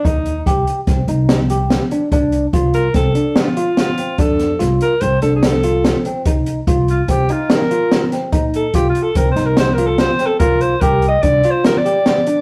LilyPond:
<<
  \new Staff \with { instrumentName = "Alto saxophone" } { \time 5/4 \key f \mixolydian \tempo 4 = 145 ees'4 r1 | r4. bes'8 a'4 f'4 f'4 | a'4 r8 bes'8 \tuplet 3/2 { c''8. a'8 aes'16 } a'4. r8 | r4. f'8 g'8 f'8 bes'4. r8 |
r8 a'8 \tuplet 3/2 { g'8 f'8 a'8 bes'8 c''8 bes'8 c''8 bes'8 a'8 c''4 a'8 } | bes'8 c''8 \tuplet 3/2 { bes'4 ees''8 d''4 c''8 bes'8 d''4~ } d''4 | }
  \new Staff \with { instrumentName = "Tine electric piano" } { \time 5/4 \key f \mixolydian ees'4 g'4 c'8 ees'4 g'4 d'8 | d'4 f'4 c'8 d'4 f'4 c'8 | d'4 f'4 c'8 d'4 f'4 c'8 | ees'4 f'4 c'8 ees'4 f'4 c'8 |
ees'4 f'4 c'8 ees'4 f'4 c'8 | f'4 g'4 d'8 f'4 g'4 d'8 | }
  \new Staff \with { instrumentName = "Upright bass" } { \clef bass \time 5/4 \key f \mixolydian ees,4 c,8 r8 c,8 c,2 r8 | c,4 c,4 c,8 r2 r8 | f,4 c,8 r8 c,8 c,2 r8 | c,4 c,4 c,8 r2 r8 |
bes,4 c,8 r8 c,8 c,2 r8 | c,4 c,4 c,8 r2 r8 | }
  \new DrumStaff \with { instrumentName = "Drums" } \drummode { \time 5/4 <hh bd>8 hh8 <hh bd>8 hh8 <hh bd sn>8 hh8 <hh sn>8 hh8 <hh sn>8 hh8 | <hh bd>8 hh8 <hh bd>8 hh8 <hh bd sn>8 hh8 <hh sn>8 hh8 <hh sn>8 hh8 | <hh bd>8 <hh sn>8 <hh sn>8 hh8 hh8 hh8 <hh sn>8 hh8 <hh sn>8 hh8 | <hh bd>8 hh8 <hh bd>8 hh8 <hh bd>8 hh8 <hh sn>8 hh8 <hh sn>8 <hh sn>8 |
<hh bd>8 hh8 <hh bd>8 hh8 <hh bd>8 <hh sn>8 <hh sn>8 hh8 <hh sn>8 <hh sn>8 | <hh bd>8 hh8 <hh bd>8 hh8 <hh bd>8 hh8 <hh sn>8 hh8 <hh sn>8 hh8 | }
>>